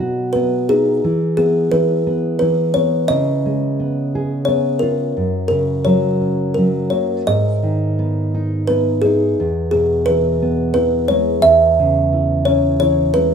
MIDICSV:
0, 0, Header, 1, 3, 480
1, 0, Start_track
1, 0, Tempo, 690449
1, 720, Time_signature, 3, 2, 24, 8
1, 3592, Tempo, 706714
1, 5992, Tempo, 684932
1, 9246, End_track
2, 0, Start_track
2, 0, Title_t, "Kalimba"
2, 0, Program_c, 0, 108
2, 0, Note_on_c, 0, 75, 85
2, 206, Note_off_c, 0, 75, 0
2, 227, Note_on_c, 0, 71, 71
2, 481, Note_on_c, 0, 68, 73
2, 482, Note_off_c, 0, 71, 0
2, 945, Note_off_c, 0, 68, 0
2, 953, Note_on_c, 0, 68, 76
2, 1192, Note_on_c, 0, 71, 78
2, 1200, Note_off_c, 0, 68, 0
2, 1655, Note_off_c, 0, 71, 0
2, 1663, Note_on_c, 0, 71, 77
2, 1773, Note_off_c, 0, 71, 0
2, 1904, Note_on_c, 0, 73, 78
2, 2015, Note_off_c, 0, 73, 0
2, 2142, Note_on_c, 0, 75, 91
2, 3081, Note_off_c, 0, 75, 0
2, 3094, Note_on_c, 0, 73, 81
2, 3206, Note_off_c, 0, 73, 0
2, 3333, Note_on_c, 0, 70, 72
2, 3798, Note_off_c, 0, 70, 0
2, 3806, Note_on_c, 0, 70, 75
2, 4053, Note_on_c, 0, 73, 77
2, 4062, Note_off_c, 0, 70, 0
2, 4514, Note_off_c, 0, 73, 0
2, 4527, Note_on_c, 0, 70, 69
2, 4771, Note_on_c, 0, 73, 66
2, 4787, Note_off_c, 0, 70, 0
2, 4884, Note_off_c, 0, 73, 0
2, 5021, Note_on_c, 0, 75, 91
2, 5975, Note_on_c, 0, 71, 80
2, 6016, Note_off_c, 0, 75, 0
2, 6213, Note_on_c, 0, 68, 78
2, 6234, Note_off_c, 0, 71, 0
2, 6693, Note_off_c, 0, 68, 0
2, 6701, Note_on_c, 0, 68, 74
2, 6943, Note_on_c, 0, 71, 84
2, 6954, Note_off_c, 0, 68, 0
2, 7412, Note_off_c, 0, 71, 0
2, 7420, Note_on_c, 0, 71, 85
2, 7529, Note_off_c, 0, 71, 0
2, 7662, Note_on_c, 0, 73, 79
2, 7885, Note_off_c, 0, 73, 0
2, 7899, Note_on_c, 0, 76, 100
2, 8599, Note_off_c, 0, 76, 0
2, 8622, Note_on_c, 0, 73, 86
2, 8849, Note_off_c, 0, 73, 0
2, 8864, Note_on_c, 0, 73, 84
2, 9091, Note_off_c, 0, 73, 0
2, 9102, Note_on_c, 0, 71, 83
2, 9246, Note_off_c, 0, 71, 0
2, 9246, End_track
3, 0, Start_track
3, 0, Title_t, "Nylon-string guitar"
3, 0, Program_c, 1, 24
3, 0, Note_on_c, 1, 47, 56
3, 0, Note_on_c, 1, 54, 47
3, 0, Note_on_c, 1, 59, 48
3, 0, Note_on_c, 1, 66, 50
3, 237, Note_off_c, 1, 59, 0
3, 245, Note_on_c, 1, 59, 47
3, 455, Note_off_c, 1, 54, 0
3, 483, Note_on_c, 1, 63, 47
3, 691, Note_off_c, 1, 47, 0
3, 702, Note_off_c, 1, 66, 0
3, 710, Note_off_c, 1, 59, 0
3, 715, Note_off_c, 1, 63, 0
3, 724, Note_on_c, 1, 52, 63
3, 958, Note_on_c, 1, 59, 51
3, 1193, Note_off_c, 1, 52, 0
3, 1201, Note_on_c, 1, 52, 52
3, 1429, Note_off_c, 1, 59, 0
3, 1438, Note_on_c, 1, 59, 55
3, 1673, Note_off_c, 1, 52, 0
3, 1682, Note_on_c, 1, 52, 52
3, 1909, Note_off_c, 1, 59, 0
3, 1917, Note_on_c, 1, 59, 55
3, 2144, Note_off_c, 1, 52, 0
3, 2148, Note_off_c, 1, 59, 0
3, 2153, Note_on_c, 1, 49, 65
3, 2403, Note_on_c, 1, 56, 49
3, 2638, Note_on_c, 1, 59, 53
3, 2886, Note_on_c, 1, 68, 53
3, 3108, Note_off_c, 1, 59, 0
3, 3116, Note_on_c, 1, 59, 50
3, 3329, Note_off_c, 1, 56, 0
3, 3351, Note_off_c, 1, 68, 0
3, 3354, Note_on_c, 1, 65, 50
3, 3564, Note_off_c, 1, 49, 0
3, 3579, Note_off_c, 1, 59, 0
3, 3586, Note_off_c, 1, 65, 0
3, 3592, Note_on_c, 1, 42, 59
3, 3827, Note_on_c, 1, 49, 47
3, 4062, Note_on_c, 1, 54, 50
3, 4303, Note_on_c, 1, 61, 50
3, 4541, Note_off_c, 1, 54, 0
3, 4550, Note_on_c, 1, 54, 44
3, 4761, Note_off_c, 1, 49, 0
3, 4783, Note_on_c, 1, 58, 45
3, 5004, Note_off_c, 1, 42, 0
3, 5008, Note_off_c, 1, 61, 0
3, 5018, Note_off_c, 1, 54, 0
3, 5021, Note_off_c, 1, 58, 0
3, 5023, Note_on_c, 1, 44, 57
3, 5265, Note_on_c, 1, 51, 46
3, 5507, Note_on_c, 1, 59, 48
3, 5750, Note_on_c, 1, 63, 50
3, 5979, Note_off_c, 1, 59, 0
3, 5987, Note_on_c, 1, 59, 44
3, 6203, Note_off_c, 1, 51, 0
3, 6226, Note_off_c, 1, 63, 0
3, 6234, Note_on_c, 1, 63, 49
3, 6444, Note_off_c, 1, 44, 0
3, 6460, Note_off_c, 1, 59, 0
3, 6469, Note_off_c, 1, 63, 0
3, 6481, Note_on_c, 1, 40, 60
3, 6722, Note_on_c, 1, 47, 47
3, 6965, Note_on_c, 1, 52, 50
3, 7199, Note_on_c, 1, 59, 54
3, 7427, Note_off_c, 1, 52, 0
3, 7435, Note_on_c, 1, 52, 47
3, 7639, Note_off_c, 1, 47, 0
3, 7673, Note_on_c, 1, 56, 51
3, 7877, Note_off_c, 1, 40, 0
3, 7886, Note_off_c, 1, 59, 0
3, 7893, Note_off_c, 1, 52, 0
3, 7900, Note_off_c, 1, 56, 0
3, 7906, Note_on_c, 1, 40, 63
3, 8159, Note_on_c, 1, 49, 52
3, 8392, Note_on_c, 1, 52, 49
3, 8640, Note_on_c, 1, 61, 54
3, 8864, Note_off_c, 1, 52, 0
3, 8872, Note_on_c, 1, 52, 46
3, 9090, Note_off_c, 1, 49, 0
3, 9118, Note_on_c, 1, 56, 49
3, 9246, Note_off_c, 1, 40, 0
3, 9246, Note_off_c, 1, 52, 0
3, 9246, Note_off_c, 1, 56, 0
3, 9246, Note_off_c, 1, 61, 0
3, 9246, End_track
0, 0, End_of_file